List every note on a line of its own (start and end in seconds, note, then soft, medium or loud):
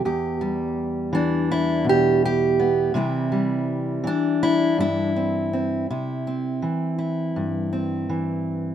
0.05 2.94 E2 medium
0.05 1.51 G4 medium
0.41 2.95 G3 soft
1.13 2.94 E3 medium
1.13 2.22 D4 medium
1.51 1.86 E4 medium
1.85 2.89 B2 medium
1.89 2.23 G4 loud
2.25 2.96 G4 medium
2.59 2.95 B3 soft
2.94 4.04 C3 medium
2.94 4.02 E3 soft
2.94 3.31 G3 soft
2.94 4.05 C4 soft
2.94 4.42 E4 medium
3.32 8.75 G3 soft
4.04 5.85 E3 medium
4.04 5.16 D4 medium
4.43 4.79 E4 loud
4.78 5.85 G2 medium
4.78 5.89 E4 loud
5.16 5.52 C4 soft
5.53 5.86 C4 soft
5.90 6.63 C3 medium
5.90 6.98 E4 soft
6.27 7.71 C4 soft
6.62 8.08 E3 medium
6.98 8.75 E4 soft
7.36 8.75 G2 medium
7.73 8.75 C4 soft
8.09 8.75 E3 soft